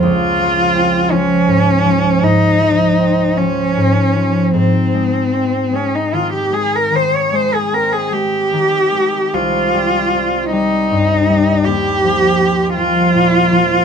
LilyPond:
<<
  \new Staff \with { instrumentName = "Cello" } { \time 12/8 \key aes \major \tempo 4. = 51 f'4. des'4. ees'4. des'4. | c'4. des'16 ees'16 f'16 g'16 aes'16 bes'16 c''16 des''16 c''16 aes'16 bes'16 aes'16 g'4. | f'4. ees'4. g'4. f'4. | }
  \new Staff \with { instrumentName = "Harp" } { \clef bass \time 12/8 \key aes \major <des, f c'>8 f8 c'8 f8 aes,8 f8 aes,8 f8 c'8 f8 aes,8 f8 | aes,8 aes8 c'8 aes8 ees8 aes8 ees8 aes8 c'8 aes8 ees8 aes8 | c,8 g8 c'8 g8 g,8 g8 ees,8 f8 c'8 f8 bes,8 f8 | }
>>